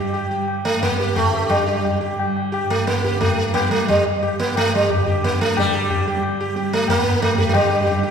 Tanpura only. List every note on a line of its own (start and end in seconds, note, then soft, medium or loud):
0.00 0.73 G2 medium
0.00 1.22 D3 medium
0.00 0.25 G3 medium
0.25 1.68 G3 medium
0.74 2.63 G2 medium
1.22 3.11 D3 medium
1.68 2.16 G3 medium
2.16 3.59 G3 medium
2.63 4.52 G2 medium
3.11 5.00 D3 medium
3.59 4.06 G3 medium
4.06 5.46 G3 medium
4.53 6.95 G2 medium
5.01 5.56 D3 medium
5.46 6.04 G3 medium
5.56 7.41 D3 medium
6.04 6.49 G3 medium
6.49 7.87 G3 medium
6.95 8.11 G2 medium
7.41 8.11 D3 medium
7.87 8.11 G3 medium